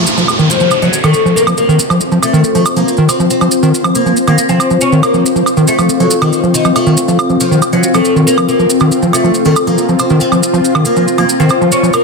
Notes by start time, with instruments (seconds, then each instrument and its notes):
Already playing: ambient pad C4, synth drone C4 C5, downlifter
0.07 ambient pad F4, maracas
0.17 acid bass F3, ambient pad C5 F5, maracas
0.28 high woodblock, maracas
0.39 acid bass D#3, maracas
0.50 oud F3, maracas
0.60 acid bass F3, maracas
0.71 high woodblock, maracas
0.82 acid bass F3, oud F#3, maracas
0.93 maracas
1.04 acid bass D#3, oud A3, high woodblock, maracas
1.14 maracas
1.25 acid bass F3, maracas
1.36 oud A#3, maracas
1.47 acid bass F3, high woodblock, maracas
1.57 oud A#3, maracas
1.69 acid bass D#3, maracas
1.79 maracas
1.90 acid bass F3, high woodblock, maracas
2.01 maracas
2.12 acid bass F3, maracas
2.23 oud A3, high woodblock, maracas
2.33 acid bass D#3, maracas
2.44 maracas
2.55 acid bass F3, oud A3, maracas
2.66 high woodblock, maracas
2.76 acid bass F3, oud A#3, maracas
2.88 maracas
2.97 acid bass D#3, maracas
3.09 oud C4, high woodblock, maracas
3.20 acid bass F3, maracas
3.30 oud C4, maracas
3.41 acid bass F3, high woodblock, maracas
3.51 maracas
3.63 acid bass D#3, maracas
3.74 maracas
3.84 acid bass F3, high woodblock, maracas
3.95 oud A#3, maracas
4.06 acid bass F3, maracas
4.16 maracas
4.27 acid bass D#3, oud A#3, high woodblock, maracas
4.38 maracas
4.49 acid bass F3, oud C4, maracas
4.60 high woodblock, maracas
4.70 acid bass F3, maracas
4.81 oud C#4, maracas
4.92 acid bass D#3, maracas
5.03 oud A#3, high woodblock, maracas
5.14 acid bass F3, maracas
5.26 maracas
5.35 acid bass F3, maracas
5.46 high woodblock, maracas
5.57 acid bass D#3, maracas
5.67 oud A3, maracas
5.79 acid bass F3, high woodblock, maracas
5.89 maracas
6.00 acid bass F3, oud F#3, maracas
6.11 maracas
6.22 acid bass D#3, oud D#3, high woodblock, maracas
6.33 maracas
6.43 acid bass F3, maracas
6.54 oud D#3, maracas
6.65 acid bass F3, high woodblock, maracas
6.76 oud A3, synth drone F4, high woodblock, maracas
6.86 acid bass D#3, maracas
6.97 maracas
7.08 acid bass F3, maracas
7.19 high woodblock, maracas
7.30 acid bass F3, maracas
7.40 oud F3, maracas
7.51 acid bass D#3, maracas
7.62 high woodblock, maracas
7.73 acid bass F3, oud F#3, maracas
7.83 maracas
7.94 acid bass F3, oud A3, high woodblock, maracas
8.05 maracas
8.16 acid bass D#3, maracas
8.27 oud A#3, maracas
8.38 acid bass F3, high woodblock, maracas
8.48 oud A#3, maracas
8.59 acid bass F3, maracas
8.70 maracas
8.80 acid bass D#3, high woodblock, maracas
8.92 maracas
9.02 acid bass F3, maracas
9.13 oud A3, high woodblock, maracas
9.24 acid bass F3, maracas
9.34 maracas
9.45 acid bass D#3, oud A3, maracas
9.56 high woodblock, maracas
9.67 acid bass F3, oud A#3, maracas
9.78 maracas
9.89 acid bass F3, maracas
9.99 oud C4, high woodblock, maracas
10.10 acid bass D#3, maracas
10.20 oud C4, maracas
10.32 acid bass F3, high woodblock, maracas
10.43 maracas
10.53 acid bass F3, maracas
10.64 maracas
10.75 acid bass D#3, high woodblock, maracas
10.85 oud A#3, maracas
10.96 acid bass F3, maracas
11.08 maracas
11.18 acid bass F3, oud A#3, high woodblock, maracas
11.29 maracas
11.40 acid bass D#3, oud C4, maracas
11.49 high woodblock, maracas
11.61 acid bass F3, maracas
11.72 oud C#4, maracas
11.83 acid bass F3, maracas
11.93 oud A#3, high woodblock, maracas